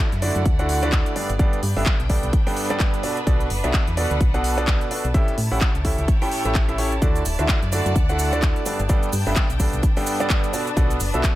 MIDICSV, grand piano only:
0, 0, Header, 1, 2, 480
1, 0, Start_track
1, 0, Tempo, 468750
1, 1427, Time_signature, 4, 2, 24, 8
1, 11624, End_track
2, 0, Start_track
2, 0, Title_t, "Grand piano"
2, 0, Program_c, 0, 0
2, 226, Note_on_c, 0, 50, 82
2, 226, Note_on_c, 0, 57, 71
2, 226, Note_on_c, 0, 62, 72
2, 226, Note_on_c, 0, 66, 73
2, 226, Note_on_c, 0, 74, 89
2, 227, Note_on_c, 0, 64, 75
2, 423, Note_off_c, 0, 50, 0
2, 423, Note_off_c, 0, 57, 0
2, 423, Note_off_c, 0, 62, 0
2, 423, Note_off_c, 0, 64, 0
2, 423, Note_off_c, 0, 66, 0
2, 423, Note_off_c, 0, 74, 0
2, 607, Note_on_c, 0, 50, 88
2, 607, Note_on_c, 0, 57, 84
2, 607, Note_on_c, 0, 62, 83
2, 607, Note_on_c, 0, 64, 83
2, 607, Note_on_c, 0, 66, 84
2, 607, Note_on_c, 0, 78, 98
2, 813, Note_off_c, 0, 50, 0
2, 813, Note_off_c, 0, 57, 0
2, 813, Note_off_c, 0, 62, 0
2, 813, Note_off_c, 0, 64, 0
2, 813, Note_off_c, 0, 66, 0
2, 813, Note_off_c, 0, 78, 0
2, 846, Note_on_c, 0, 64, 87
2, 847, Note_on_c, 0, 50, 102
2, 847, Note_on_c, 0, 57, 85
2, 847, Note_on_c, 0, 62, 84
2, 847, Note_on_c, 0, 66, 87
2, 847, Note_on_c, 0, 74, 106
2, 1163, Note_off_c, 0, 50, 0
2, 1163, Note_off_c, 0, 57, 0
2, 1163, Note_off_c, 0, 62, 0
2, 1163, Note_off_c, 0, 64, 0
2, 1163, Note_off_c, 0, 66, 0
2, 1163, Note_off_c, 0, 74, 0
2, 1187, Note_on_c, 0, 43, 76
2, 1187, Note_on_c, 0, 59, 72
2, 1187, Note_on_c, 0, 62, 68
2, 1187, Note_on_c, 0, 67, 71
2, 1187, Note_on_c, 0, 69, 72
2, 1187, Note_on_c, 0, 74, 82
2, 1323, Note_off_c, 0, 43, 0
2, 1323, Note_off_c, 0, 59, 0
2, 1323, Note_off_c, 0, 62, 0
2, 1323, Note_off_c, 0, 67, 0
2, 1323, Note_off_c, 0, 69, 0
2, 1323, Note_off_c, 0, 74, 0
2, 1427, Note_on_c, 0, 43, 96
2, 1427, Note_on_c, 0, 59, 90
2, 1427, Note_on_c, 0, 62, 92
2, 1427, Note_on_c, 0, 67, 89
2, 1427, Note_on_c, 0, 69, 86
2, 1427, Note_on_c, 0, 74, 105
2, 1623, Note_off_c, 0, 43, 0
2, 1623, Note_off_c, 0, 59, 0
2, 1623, Note_off_c, 0, 62, 0
2, 1623, Note_off_c, 0, 67, 0
2, 1623, Note_off_c, 0, 69, 0
2, 1623, Note_off_c, 0, 74, 0
2, 1808, Note_on_c, 0, 43, 80
2, 1808, Note_on_c, 0, 59, 75
2, 1808, Note_on_c, 0, 62, 72
2, 1808, Note_on_c, 0, 67, 71
2, 1808, Note_on_c, 0, 69, 75
2, 1808, Note_on_c, 0, 76, 88
2, 1986, Note_off_c, 0, 43, 0
2, 1986, Note_off_c, 0, 59, 0
2, 1986, Note_off_c, 0, 62, 0
2, 1986, Note_off_c, 0, 67, 0
2, 1986, Note_off_c, 0, 69, 0
2, 1986, Note_off_c, 0, 76, 0
2, 2147, Note_on_c, 0, 43, 81
2, 2147, Note_on_c, 0, 59, 73
2, 2147, Note_on_c, 0, 62, 71
2, 2147, Note_on_c, 0, 67, 70
2, 2147, Note_on_c, 0, 69, 76
2, 2147, Note_on_c, 0, 74, 88
2, 2343, Note_off_c, 0, 43, 0
2, 2343, Note_off_c, 0, 59, 0
2, 2343, Note_off_c, 0, 62, 0
2, 2343, Note_off_c, 0, 67, 0
2, 2343, Note_off_c, 0, 69, 0
2, 2343, Note_off_c, 0, 74, 0
2, 2526, Note_on_c, 0, 43, 92
2, 2526, Note_on_c, 0, 59, 83
2, 2526, Note_on_c, 0, 62, 84
2, 2526, Note_on_c, 0, 67, 81
2, 2526, Note_on_c, 0, 69, 82
2, 2526, Note_on_c, 0, 79, 104
2, 2733, Note_off_c, 0, 43, 0
2, 2733, Note_off_c, 0, 59, 0
2, 2733, Note_off_c, 0, 62, 0
2, 2733, Note_off_c, 0, 67, 0
2, 2733, Note_off_c, 0, 69, 0
2, 2733, Note_off_c, 0, 79, 0
2, 2766, Note_on_c, 0, 43, 98
2, 2766, Note_on_c, 0, 59, 91
2, 2766, Note_on_c, 0, 62, 92
2, 2766, Note_on_c, 0, 67, 92
2, 2766, Note_on_c, 0, 69, 85
2, 2766, Note_on_c, 0, 74, 110
2, 3083, Note_off_c, 0, 43, 0
2, 3083, Note_off_c, 0, 59, 0
2, 3083, Note_off_c, 0, 62, 0
2, 3083, Note_off_c, 0, 67, 0
2, 3083, Note_off_c, 0, 69, 0
2, 3083, Note_off_c, 0, 74, 0
2, 3106, Note_on_c, 0, 66, 67
2, 3107, Note_on_c, 0, 47, 77
2, 3107, Note_on_c, 0, 59, 70
2, 3107, Note_on_c, 0, 62, 69
2, 3107, Note_on_c, 0, 69, 74
2, 3107, Note_on_c, 0, 74, 81
2, 3243, Note_off_c, 0, 47, 0
2, 3243, Note_off_c, 0, 59, 0
2, 3243, Note_off_c, 0, 62, 0
2, 3243, Note_off_c, 0, 66, 0
2, 3243, Note_off_c, 0, 69, 0
2, 3243, Note_off_c, 0, 74, 0
2, 3346, Note_on_c, 0, 47, 94
2, 3346, Note_on_c, 0, 59, 89
2, 3346, Note_on_c, 0, 66, 89
2, 3346, Note_on_c, 0, 74, 105
2, 3347, Note_on_c, 0, 62, 90
2, 3347, Note_on_c, 0, 69, 89
2, 3542, Note_off_c, 0, 59, 0
2, 3542, Note_off_c, 0, 66, 0
2, 3543, Note_off_c, 0, 47, 0
2, 3543, Note_off_c, 0, 62, 0
2, 3543, Note_off_c, 0, 69, 0
2, 3543, Note_off_c, 0, 74, 0
2, 3726, Note_on_c, 0, 47, 83
2, 3726, Note_on_c, 0, 59, 73
2, 3726, Note_on_c, 0, 62, 74
2, 3726, Note_on_c, 0, 66, 71
2, 3726, Note_on_c, 0, 69, 73
2, 3726, Note_on_c, 0, 76, 92
2, 3905, Note_off_c, 0, 47, 0
2, 3905, Note_off_c, 0, 59, 0
2, 3905, Note_off_c, 0, 62, 0
2, 3905, Note_off_c, 0, 66, 0
2, 3905, Note_off_c, 0, 69, 0
2, 3905, Note_off_c, 0, 76, 0
2, 4066, Note_on_c, 0, 47, 82
2, 4066, Note_on_c, 0, 59, 70
2, 4066, Note_on_c, 0, 62, 75
2, 4066, Note_on_c, 0, 66, 74
2, 4066, Note_on_c, 0, 69, 74
2, 4067, Note_on_c, 0, 74, 90
2, 4262, Note_off_c, 0, 59, 0
2, 4263, Note_off_c, 0, 47, 0
2, 4263, Note_off_c, 0, 62, 0
2, 4263, Note_off_c, 0, 66, 0
2, 4263, Note_off_c, 0, 69, 0
2, 4263, Note_off_c, 0, 74, 0
2, 4445, Note_on_c, 0, 47, 97
2, 4445, Note_on_c, 0, 59, 89
2, 4445, Note_on_c, 0, 62, 87
2, 4445, Note_on_c, 0, 66, 88
2, 4445, Note_on_c, 0, 69, 87
2, 4445, Note_on_c, 0, 78, 101
2, 4653, Note_off_c, 0, 47, 0
2, 4653, Note_off_c, 0, 59, 0
2, 4653, Note_off_c, 0, 62, 0
2, 4653, Note_off_c, 0, 66, 0
2, 4653, Note_off_c, 0, 69, 0
2, 4653, Note_off_c, 0, 78, 0
2, 4685, Note_on_c, 0, 47, 97
2, 4685, Note_on_c, 0, 59, 89
2, 4685, Note_on_c, 0, 62, 90
2, 4685, Note_on_c, 0, 66, 88
2, 4685, Note_on_c, 0, 69, 91
2, 4685, Note_on_c, 0, 74, 113
2, 5002, Note_off_c, 0, 47, 0
2, 5002, Note_off_c, 0, 62, 0
2, 5002, Note_off_c, 0, 66, 0
2, 5002, Note_off_c, 0, 74, 0
2, 5003, Note_off_c, 0, 59, 0
2, 5003, Note_off_c, 0, 69, 0
2, 5026, Note_on_c, 0, 62, 67
2, 5027, Note_on_c, 0, 59, 77
2, 5027, Note_on_c, 0, 66, 71
2, 5027, Note_on_c, 0, 69, 68
2, 5027, Note_on_c, 0, 74, 86
2, 5163, Note_off_c, 0, 59, 0
2, 5163, Note_off_c, 0, 62, 0
2, 5163, Note_off_c, 0, 66, 0
2, 5163, Note_off_c, 0, 69, 0
2, 5163, Note_off_c, 0, 74, 0
2, 5267, Note_on_c, 0, 45, 98
2, 5267, Note_on_c, 0, 61, 90
2, 5267, Note_on_c, 0, 64, 89
2, 5267, Note_on_c, 0, 69, 91
2, 5267, Note_on_c, 0, 76, 114
2, 5268, Note_on_c, 0, 67, 90
2, 5463, Note_off_c, 0, 45, 0
2, 5463, Note_off_c, 0, 61, 0
2, 5463, Note_off_c, 0, 64, 0
2, 5463, Note_off_c, 0, 67, 0
2, 5463, Note_off_c, 0, 69, 0
2, 5463, Note_off_c, 0, 76, 0
2, 5647, Note_on_c, 0, 45, 76
2, 5647, Note_on_c, 0, 61, 71
2, 5647, Note_on_c, 0, 64, 74
2, 5647, Note_on_c, 0, 67, 74
2, 5647, Note_on_c, 0, 69, 73
2, 5647, Note_on_c, 0, 78, 85
2, 5825, Note_off_c, 0, 45, 0
2, 5825, Note_off_c, 0, 61, 0
2, 5825, Note_off_c, 0, 64, 0
2, 5825, Note_off_c, 0, 67, 0
2, 5825, Note_off_c, 0, 69, 0
2, 5825, Note_off_c, 0, 78, 0
2, 5987, Note_on_c, 0, 45, 83
2, 5987, Note_on_c, 0, 61, 73
2, 5987, Note_on_c, 0, 64, 73
2, 5987, Note_on_c, 0, 67, 72
2, 5987, Note_on_c, 0, 76, 83
2, 5988, Note_on_c, 0, 69, 74
2, 6183, Note_off_c, 0, 45, 0
2, 6183, Note_off_c, 0, 61, 0
2, 6183, Note_off_c, 0, 64, 0
2, 6183, Note_off_c, 0, 67, 0
2, 6183, Note_off_c, 0, 69, 0
2, 6183, Note_off_c, 0, 76, 0
2, 6367, Note_on_c, 0, 45, 90
2, 6367, Note_on_c, 0, 61, 84
2, 6367, Note_on_c, 0, 64, 86
2, 6367, Note_on_c, 0, 67, 86
2, 6367, Note_on_c, 0, 69, 84
2, 6367, Note_on_c, 0, 79, 100
2, 6573, Note_off_c, 0, 61, 0
2, 6573, Note_off_c, 0, 67, 0
2, 6573, Note_off_c, 0, 69, 0
2, 6573, Note_off_c, 0, 79, 0
2, 6574, Note_off_c, 0, 45, 0
2, 6574, Note_off_c, 0, 64, 0
2, 6606, Note_on_c, 0, 76, 89
2, 6607, Note_on_c, 0, 45, 79
2, 6607, Note_on_c, 0, 61, 70
2, 6607, Note_on_c, 0, 64, 73
2, 6607, Note_on_c, 0, 67, 71
2, 6607, Note_on_c, 0, 69, 74
2, 6785, Note_off_c, 0, 45, 0
2, 6785, Note_off_c, 0, 61, 0
2, 6785, Note_off_c, 0, 64, 0
2, 6785, Note_off_c, 0, 67, 0
2, 6785, Note_off_c, 0, 69, 0
2, 6785, Note_off_c, 0, 76, 0
2, 6847, Note_on_c, 0, 45, 82
2, 6847, Note_on_c, 0, 61, 77
2, 6847, Note_on_c, 0, 64, 76
2, 6847, Note_on_c, 0, 67, 77
2, 6847, Note_on_c, 0, 69, 77
2, 6847, Note_on_c, 0, 76, 92
2, 6923, Note_off_c, 0, 61, 0
2, 6923, Note_off_c, 0, 67, 0
2, 6923, Note_off_c, 0, 69, 0
2, 6923, Note_off_c, 0, 76, 0
2, 6924, Note_off_c, 0, 45, 0
2, 6924, Note_off_c, 0, 64, 0
2, 6946, Note_on_c, 0, 67, 85
2, 6946, Note_on_c, 0, 69, 87
2, 6946, Note_on_c, 0, 73, 102
2, 6947, Note_on_c, 0, 61, 94
2, 6947, Note_on_c, 0, 64, 83
2, 7083, Note_off_c, 0, 61, 0
2, 7083, Note_off_c, 0, 64, 0
2, 7083, Note_off_c, 0, 67, 0
2, 7083, Note_off_c, 0, 69, 0
2, 7083, Note_off_c, 0, 73, 0
2, 7187, Note_on_c, 0, 50, 101
2, 7187, Note_on_c, 0, 57, 90
2, 7187, Note_on_c, 0, 62, 89
2, 7187, Note_on_c, 0, 64, 95
2, 7187, Note_on_c, 0, 66, 88
2, 7187, Note_on_c, 0, 74, 108
2, 7383, Note_off_c, 0, 50, 0
2, 7383, Note_off_c, 0, 57, 0
2, 7383, Note_off_c, 0, 62, 0
2, 7383, Note_off_c, 0, 64, 0
2, 7383, Note_off_c, 0, 66, 0
2, 7383, Note_off_c, 0, 74, 0
2, 7566, Note_on_c, 0, 50, 83
2, 7566, Note_on_c, 0, 57, 71
2, 7566, Note_on_c, 0, 64, 73
2, 7566, Note_on_c, 0, 66, 74
2, 7566, Note_on_c, 0, 76, 90
2, 7567, Note_on_c, 0, 62, 73
2, 7745, Note_off_c, 0, 50, 0
2, 7745, Note_off_c, 0, 57, 0
2, 7745, Note_off_c, 0, 62, 0
2, 7745, Note_off_c, 0, 64, 0
2, 7745, Note_off_c, 0, 66, 0
2, 7745, Note_off_c, 0, 76, 0
2, 7907, Note_on_c, 0, 50, 77
2, 7908, Note_on_c, 0, 57, 75
2, 7908, Note_on_c, 0, 62, 73
2, 7908, Note_on_c, 0, 64, 73
2, 7908, Note_on_c, 0, 66, 75
2, 7908, Note_on_c, 0, 74, 89
2, 8103, Note_off_c, 0, 50, 0
2, 8103, Note_off_c, 0, 57, 0
2, 8103, Note_off_c, 0, 62, 0
2, 8103, Note_off_c, 0, 64, 0
2, 8103, Note_off_c, 0, 66, 0
2, 8103, Note_off_c, 0, 74, 0
2, 8287, Note_on_c, 0, 50, 88
2, 8287, Note_on_c, 0, 62, 83
2, 8287, Note_on_c, 0, 66, 82
2, 8287, Note_on_c, 0, 78, 104
2, 8288, Note_on_c, 0, 57, 83
2, 8288, Note_on_c, 0, 64, 80
2, 8494, Note_off_c, 0, 50, 0
2, 8494, Note_off_c, 0, 57, 0
2, 8494, Note_off_c, 0, 62, 0
2, 8494, Note_off_c, 0, 64, 0
2, 8494, Note_off_c, 0, 66, 0
2, 8494, Note_off_c, 0, 78, 0
2, 8527, Note_on_c, 0, 50, 99
2, 8527, Note_on_c, 0, 57, 92
2, 8527, Note_on_c, 0, 62, 90
2, 8527, Note_on_c, 0, 64, 89
2, 8527, Note_on_c, 0, 66, 88
2, 8527, Note_on_c, 0, 74, 109
2, 8843, Note_off_c, 0, 50, 0
2, 8843, Note_off_c, 0, 57, 0
2, 8843, Note_off_c, 0, 62, 0
2, 8843, Note_off_c, 0, 64, 0
2, 8843, Note_off_c, 0, 66, 0
2, 8843, Note_off_c, 0, 74, 0
2, 8868, Note_on_c, 0, 43, 79
2, 8868, Note_on_c, 0, 59, 69
2, 8868, Note_on_c, 0, 62, 73
2, 8868, Note_on_c, 0, 67, 72
2, 8868, Note_on_c, 0, 69, 67
2, 8868, Note_on_c, 0, 74, 84
2, 9004, Note_off_c, 0, 43, 0
2, 9004, Note_off_c, 0, 59, 0
2, 9004, Note_off_c, 0, 62, 0
2, 9004, Note_off_c, 0, 67, 0
2, 9004, Note_off_c, 0, 69, 0
2, 9004, Note_off_c, 0, 74, 0
2, 9108, Note_on_c, 0, 59, 88
2, 9108, Note_on_c, 0, 62, 92
2, 9108, Note_on_c, 0, 69, 92
2, 9108, Note_on_c, 0, 74, 112
2, 9109, Note_on_c, 0, 43, 104
2, 9109, Note_on_c, 0, 67, 91
2, 9303, Note_off_c, 0, 69, 0
2, 9304, Note_off_c, 0, 43, 0
2, 9304, Note_off_c, 0, 59, 0
2, 9304, Note_off_c, 0, 62, 0
2, 9304, Note_off_c, 0, 67, 0
2, 9304, Note_off_c, 0, 74, 0
2, 9487, Note_on_c, 0, 59, 72
2, 9487, Note_on_c, 0, 67, 71
2, 9488, Note_on_c, 0, 43, 80
2, 9488, Note_on_c, 0, 62, 71
2, 9488, Note_on_c, 0, 69, 72
2, 9488, Note_on_c, 0, 76, 85
2, 9666, Note_off_c, 0, 43, 0
2, 9666, Note_off_c, 0, 59, 0
2, 9666, Note_off_c, 0, 62, 0
2, 9666, Note_off_c, 0, 67, 0
2, 9666, Note_off_c, 0, 69, 0
2, 9666, Note_off_c, 0, 76, 0
2, 9828, Note_on_c, 0, 43, 82
2, 9828, Note_on_c, 0, 59, 73
2, 9828, Note_on_c, 0, 62, 74
2, 9828, Note_on_c, 0, 67, 75
2, 9828, Note_on_c, 0, 69, 74
2, 9828, Note_on_c, 0, 74, 92
2, 10023, Note_off_c, 0, 43, 0
2, 10023, Note_off_c, 0, 59, 0
2, 10023, Note_off_c, 0, 62, 0
2, 10023, Note_off_c, 0, 67, 0
2, 10023, Note_off_c, 0, 69, 0
2, 10024, Note_off_c, 0, 74, 0
2, 10207, Note_on_c, 0, 43, 93
2, 10207, Note_on_c, 0, 59, 86
2, 10207, Note_on_c, 0, 62, 83
2, 10207, Note_on_c, 0, 67, 87
2, 10207, Note_on_c, 0, 69, 89
2, 10207, Note_on_c, 0, 79, 103
2, 10413, Note_off_c, 0, 43, 0
2, 10414, Note_off_c, 0, 59, 0
2, 10414, Note_off_c, 0, 62, 0
2, 10414, Note_off_c, 0, 67, 0
2, 10414, Note_off_c, 0, 69, 0
2, 10414, Note_off_c, 0, 79, 0
2, 10447, Note_on_c, 0, 43, 99
2, 10447, Note_on_c, 0, 59, 89
2, 10447, Note_on_c, 0, 62, 92
2, 10447, Note_on_c, 0, 67, 90
2, 10447, Note_on_c, 0, 69, 89
2, 10447, Note_on_c, 0, 74, 110
2, 10763, Note_off_c, 0, 43, 0
2, 10763, Note_off_c, 0, 59, 0
2, 10763, Note_off_c, 0, 62, 0
2, 10763, Note_off_c, 0, 67, 0
2, 10763, Note_off_c, 0, 69, 0
2, 10763, Note_off_c, 0, 74, 0
2, 10787, Note_on_c, 0, 47, 79
2, 10787, Note_on_c, 0, 66, 70
2, 10787, Note_on_c, 0, 69, 70
2, 10787, Note_on_c, 0, 74, 81
2, 10788, Note_on_c, 0, 59, 71
2, 10788, Note_on_c, 0, 62, 71
2, 10923, Note_off_c, 0, 66, 0
2, 10923, Note_off_c, 0, 74, 0
2, 10924, Note_off_c, 0, 47, 0
2, 10924, Note_off_c, 0, 59, 0
2, 10924, Note_off_c, 0, 62, 0
2, 10924, Note_off_c, 0, 69, 0
2, 11026, Note_on_c, 0, 47, 101
2, 11026, Note_on_c, 0, 66, 92
2, 11026, Note_on_c, 0, 74, 106
2, 11027, Note_on_c, 0, 59, 95
2, 11027, Note_on_c, 0, 62, 88
2, 11027, Note_on_c, 0, 69, 95
2, 11223, Note_off_c, 0, 47, 0
2, 11223, Note_off_c, 0, 59, 0
2, 11223, Note_off_c, 0, 62, 0
2, 11223, Note_off_c, 0, 66, 0
2, 11223, Note_off_c, 0, 69, 0
2, 11223, Note_off_c, 0, 74, 0
2, 11406, Note_on_c, 0, 47, 78
2, 11406, Note_on_c, 0, 59, 74
2, 11406, Note_on_c, 0, 62, 72
2, 11406, Note_on_c, 0, 66, 76
2, 11406, Note_on_c, 0, 69, 74
2, 11406, Note_on_c, 0, 76, 90
2, 11585, Note_off_c, 0, 47, 0
2, 11585, Note_off_c, 0, 59, 0
2, 11585, Note_off_c, 0, 62, 0
2, 11585, Note_off_c, 0, 66, 0
2, 11585, Note_off_c, 0, 69, 0
2, 11585, Note_off_c, 0, 76, 0
2, 11624, End_track
0, 0, End_of_file